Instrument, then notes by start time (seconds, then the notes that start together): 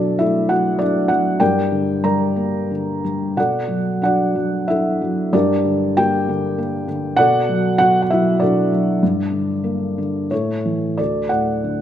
felt piano
Already playing: B2 F#3 D4 F#4 A4 D5
0.19 A3 E4 E5
0.49 F#3 F#4 F#5
0.79 A3 D4 D5
1.08 F#3 F#4 F#5
1.40 G2 G4 A#4 D5 G5
1.72 D3
2.04 G3 A#4 D5 A#5
2.36 A#3
2.71 D3
3.04 G3
3.37 B2 F#4 A4 D5 F#5
3.68 F#3
4.02 D4 F#4 D5 F#5
4.36 F#3
4.68 D4 E4 A4 E5
5.01 F#3
5.33 G2 D4 G4 A#4 D5
5.65 D3
5.97 A#3 G4 A#4 G5
6.29 D3
6.58 A#3
6.88 D3
7.16 B2 F#4 A4 D5 F#5
7.49 F#3
7.78 B2 F#4 F#5
8.02 F#5
8.10 F#3 E4 E5
8.40 B2 D4 A4 D5
8.72 F#3
9.03 G2
9.32 D3
9.64 A#3
9.98 D3
10.31 A2 A4 C#5
10.65 E3
10.97 D2 A4 D5
11.29 A2 D5 F#5
11.64 D3